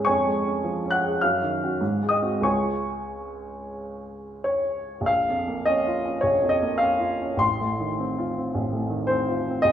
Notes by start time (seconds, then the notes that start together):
Already playing: G#2 G#3 C#4 G#4 F5 C#6 F6
0.05 F2 C#5 G#5 C#6
0.27 G#3
0.46 C#4
0.64 F3
0.85 C#4
0.91 F#5 F#6
1.04 G#4
1.21 F#2 F5 F6
1.43 D#3
1.64 C#4 F#4
1.81 G#2
2.03 G#3
2.09 D#5 D#6
2.22 C4 F#4
2.41 C#2 G#3 C#4 F4 C#5 G#5 C#6
4.44 C#5
5.01 A#1
5.06 F5
5.29 F2
5.48 A#3
5.66 C#4 D#5
5.87 F4
6.05 C#4
6.21 A#1 C#5
6.43 F2
6.49 D#5
6.62 A#3
6.78 C#4 F5
6.99 F4
7.22 C#4
7.37 A1 C6
7.61 A2
7.80 D#3
7.99 C4
8.18 F4
8.38 C4
8.54 A1
8.73 A2
8.90 D#3
9.07 C4 C5
9.29 F4
9.49 C4
9.62 A#1 D#5